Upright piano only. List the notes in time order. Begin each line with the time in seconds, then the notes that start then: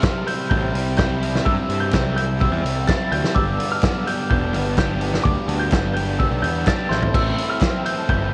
Already playing: F6
0.27 G6
0.50 G6
0.97 G6
1.45 E6
1.80 G6
2.16 G6
2.40 E6
2.87 A6
3.12 G6
3.35 E6
3.72 F6
4.07 G6
4.30 G6
4.78 G6
5.24 D6
5.60 G6
5.94 G6
6.19 E6
6.42 G6
6.67 A6
6.91 G6
7.14 E6
7.50 F6
7.86 G6
8.09 G6